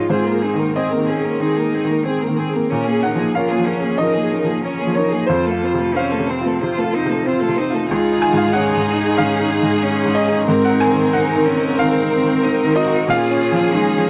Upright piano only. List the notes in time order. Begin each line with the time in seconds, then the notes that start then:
Already playing: G#2 G#3 F4 C#5 D#5 F5
0.09 G#2 C5
0.32 G#4
0.54 D#3
0.76 C4 D#5
0.97 D#3
1.19 G#4
1.40 D#3
1.63 G#4
1.84 D#3
2.05 C4
2.28 D#3
2.49 G#4
2.72 A#2
2.92 G#4
3.03 F#5
3.15 F3
3.35 C#4 F5
3.58 F3
3.80 G#4
3.98 F3 D#5
4.23 G#4
4.44 F3
4.65 C#4
4.87 F3
4.95 C#5
5.09 G#4
5.27 F2 C5
5.51 F4
5.74 C3
5.96 C5 F5
6.19 C3
6.41 F4
6.62 C3
6.84 F4
7.05 C3
7.27 C4
7.48 C3
7.70 F4
7.91 C#2
8.12 D#4
8.22 G#5
8.33 G#2
8.37 F5
8.53 C#4 F#5
8.77 G#2
8.98 D#4
9.17 G#2 F5
9.40 D#4
9.63 G#2
9.84 C#4
10.06 G#2
10.15 D#5
10.28 D#4
10.48 G#2
10.65 F#5
10.70 D#4
10.80 G#5
10.91 D#3
11.13 C4 F#5
11.35 D#3
11.57 D#4
11.79 D#3 F5
12.00 D#4
12.21 D#3
12.43 C4
12.65 D#3
12.76 D#5
12.87 D#4
13.08 A#2 F5
13.31 C#4
13.52 F3
13.75 G#3
13.97 F3